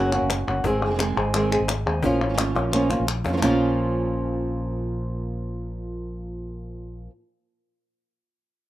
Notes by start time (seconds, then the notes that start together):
Already playing: F#1 C#3 F#3 A#3 C#4 F#4
0.12 A#3 C#4 F#4, clap
0.22 F#1
0.30 muted nylon-string guitar stroke, cajon slap, clap
0.47 G1 A#3 C#4 F#4
0.64 G#1 D#3 G#3 C4 G#4, muted nylon-string guitar stroke, cajon bass
0.82 D#3 G#3 C4 G#4
0.87 F1 D#3 G#3 G#4
0.91 D#3 G#3 C4 G#4
0.96 D#3 G#3 C4 G#4, muted nylon-string guitar stroke, cajon slap
1.00 C4 G#4, clap
1.17 G#1 G#3 C4 G#4
1.33 D#3 G#3 C4 G#4, clap
1.52 G#3 C4 G#4, clap
1.60 G#1
1.68 muted nylon-string guitar stroke, cajon slap, clap
1.86 D#2 G#3 C4 G#4
2.03 A#1 F3 A#3 C#4 F4, muted nylon-string guitar stroke, cajon bass
2.21 A#3 C#4 F4
2.29 G#1 F3 A#3 C#4 F4
2.34 F3 A#3 C#4 F4, cajon slap
2.38 F3 A#3 C#4 F4, muted nylon-string guitar stroke, clap
2.55 A#1 A#3 C#4 F4, cajon slap
2.73 F3 A#3 C#4 F4, clap
2.90 A#3 C#4 F4, cajon bass, clap
3.00 A#1
3.07 muted nylon-string guitar stroke, clap
3.24 F2 A#3 C#4 F4, cajon bass
3.29 F3 F4
3.33 F3 A#3 C#4 F4
3.37 F3 A#3 C#4 F4
3.42 A#1 A#2 F3 A#3 C#4 F4, cajon bass, clap